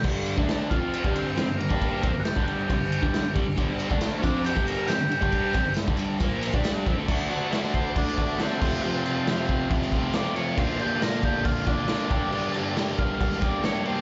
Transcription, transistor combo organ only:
\new Staff \with { instrumentName = "Transistor combo organ" } { \time 4/4 \key g \minor \tempo 4 = 137 r4. f'4 c'4 bes8~ | bes4 <fis g>8 <fis g>2 r8 | r4. <cis' d'>8 g'8 bes'8 g'4~ | g'4 r2. |
r4. c''8 d'4 <b c'>4 | <b c'>2 r4 d''8 cis''8 | c''8 g'8 bes'8 g'8 f'8 d'4.~ | d'8 r4 f''4 d''8 cis''8 c''8 | }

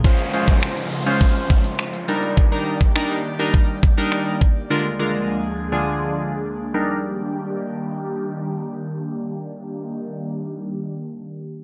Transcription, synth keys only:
\new Staff \with { instrumentName = "Synth keys" } { \time 4/4 \key ees \major \tempo 4 = 103 <aes des' f' c''>16 r16 <aes des' f' c''>8. r8 <aes des' f' c''>4 r8. <g d' ees' bes'>8 | r16 <g d' ees' bes'>8 r16 <g d' ees' bes'>8 r16 <g d' ees' bes'>8 r8 <g d' ees' bes'>8. r8 | <d aes d' f' bes'>16 r16 <d aes d' f' bes'>8. r8 <d aes d' f' aes'>4 r8. <g d' ees' bes'>8 | r1 |
r1 | }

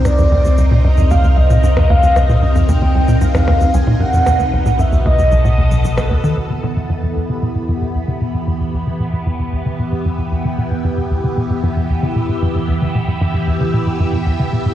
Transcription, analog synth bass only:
\new Staff \with { instrumentName = "Analog synth bass" } { \clef bass \time 4/4 \key c \minor \tempo 4 = 114 g,16 f,16 ees,16 ees,16 c,16 bes,16 g,16 f,16 ees,16 ees,16 c,16 bes,16 g,16 f,16 ees,16 ees,16 | c,16 bes,16 g,16 f,16 ees,16 ees,16 c,16 bes,16 g,16 f,16 ees,16 ees,16 c,16 bes,16 g,16 f,16 | dis,16 dis,16 b,,16 a,16 fis,16 dis,16 dis,16 dis,16 b,,16 a,16 dis,16 b,,16 b,,16 b,,16 dis,16 dis16 | \key e \minor e,16 d16 b,16 a,16 g,16 g,16 e,16 d16 b,16 a,16 g,16 g,16 e,16 d16 b,16 a,16 |
g,16 g,16 e,16 d16 b,16 a,16 g,16 g,16 e,16 d16 b,16 a,16 g,16 g,16 e,16 d16 | b,16 a,16 g,16 g,16 e,16 d16 b,16 a,16 g,16 g,16 e,16 d16 b,16 a,16 g,16 g,16 | e,16 d16 b,16 a,16 g,16 g,16 e,16 d16 b,16 a,16 g,16 g,16 e,16 d16 b,16 a,16 | }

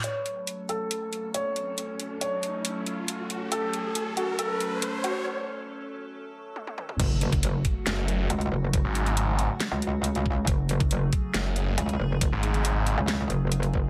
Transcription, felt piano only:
\new Staff \with { instrumentName = "Felt piano" } { \time 4/4 \key fis \minor \tempo 4 = 138 cis''4. a'4. cis''4~ | cis''4 cis''2. | a'4. fis'8 a'4. fis'8 | r1 |
r1 | r1 | r1 | r1 | }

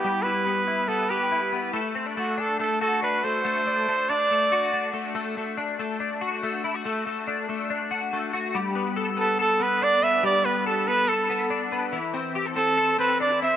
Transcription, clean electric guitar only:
\new Staff \with { instrumentName = "Clean electric guitar" } { \time 4/4 \key g \major \tempo 4 = 141 <g b e' g'>8 e'8 b8 e'8 b8 g'8 e'8 b8 | a8 c'16 d'16 a8 d'8 a8 fis'8 d'8 a8 | a8 d'8 a8 d'8 a8 fis'8 d'8 a8 | a8 a8 d'8 a8 d'8 fis'8 a8 e'16 fis'16 |
a8 a8 d'8 a8 d'8 fis'8 a8 fis'8 | g8 b8 a'8 b8 a'8 b8 d'8 b8 | g8 b8 a'8 b8 a'8 b8 d'8 b8 | e8 c'8 g'16 a'16 c'8 a'8 c'8 d'16 e'16 c'8 | }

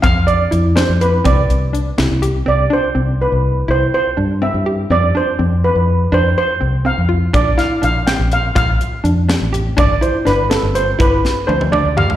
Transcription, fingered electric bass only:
\new Staff \with { instrumentName = "Fingered electric bass" } { \clef bass \time 5/8 \key c \major \tempo 4 = 123 f,4 f,8. f,8. | c,8 c,4 c,16 c,8. | c,8 r8 c,8. c,8. | c,8 r8 g,8. g,8. |
f,8 r8 f,8. f,8. | f,8 r8 c,8. f,8. | bes,,8 r8 bes,,8. bes,,8. | bes,,8 r8 f,8. a,,8. |
g,,8 r8 g,,8. g,,8. | g,,8 r8 d,8. d,8. | }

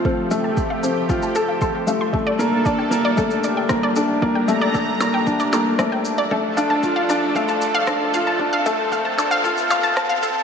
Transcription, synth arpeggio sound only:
\new Staff \with { instrumentName = "Synth arpeggio sound" } { \time 4/4 \key g \minor \tempo 4 = 115 a'16 r16 a'16 a''16 r16 f''16 a'16 r16 a'16 a''16 a'16 f''16 c'''16 r16 f''16 c'''16 | r16 d''16 a'16 r16 d''16 g''16 r16 d''16 a'16 r16 d''16 g''16 r16 d''16 a'16 r16 | d''16 g''16 r16 d''16 a'16 r16 d''16 g''16 r16 d''16 a'16 r16 d''16 g''16 r16 d''16 | a'16 r16 f''16 a''16 r16 f''16 a'16 r16 f''16 a''16 r16 f''16 a'16 r16 f''16 a''16 |
r16 f''16 a'16 r16 f''16 a''16 r16 f''16 a'16 r16 f''16 a''16 r16 f''16 a'16 r16 | }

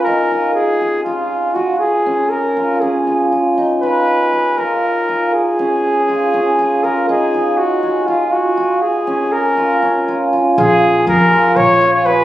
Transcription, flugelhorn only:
\new Staff \with { instrumentName = "Flugelhorn" } { \time 7/8 \key bes \phrygian \tempo 4 = 120 bes'4 aes'4 f'4 ges'8 | aes'4 bes'4 aes'4 r8 | r8 ces''4. bes'4. | aes'2. bes'8 |
aes'4 ges'4 f'8 ges'4 | aes'4 bes'2 r8 | aes'4 bes'4 des''8. des''16 ces''8 | }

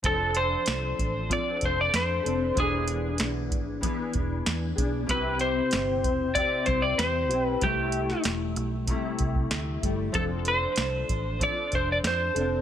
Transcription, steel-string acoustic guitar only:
\new Staff \with { instrumentName = "Steel-string acoustic guitar" } { \time 4/4 \key f \lydian \tempo 4 = 95 <f c' d' a'>2 <f c' d' a'>4. <c' d' a'>8 | <e b d' gis'>2 <e b d' gis'>4. <b d' gis'>8 | <c c' e' g'>2 <c c' e' g'>4. <c' e' g'>8 | <g a e'>2 <c g a e'>4. <g a e'>8 |
<f c' d' a'>2 <f c' d' a'>4. <c' d' a'>8 | }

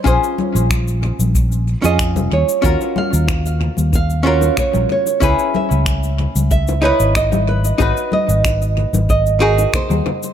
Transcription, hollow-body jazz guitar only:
\new Staff \with { instrumentName = "Hollow-body jazz guitar" } { \time 4/4 \key aes \dorian \tempo 4 = 93 <des' f' aes' c''>2~ <des' f' aes' c''>8 r16 <des' f' aes' ees''>4~ <des' f' aes' ees''>16 | <des' f' ges' bes'>2~ <des' f' ges' bes'>8 <des' f' ges' bes'>4. | <des' fes' aes' ces''>2~ <des' fes' aes' ces''>8 <ees' fes' aes' ces''>4. | <ees' ges' aes' ces''>2~ <ees' ges' aes' ces''>8 <ees' ges' aes' bes'>4 r8 | }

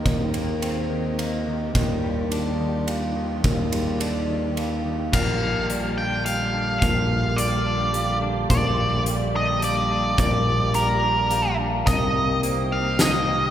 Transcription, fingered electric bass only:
\new Staff \with { instrumentName = "Fingered electric bass" } { \clef bass \time 3/4 \key bes \major \tempo 4 = 107 ees,2. | ees,2. | ees,2. | bes,,2. |
bes,,2. | bes,,2. | bes,,2. | c,2. | }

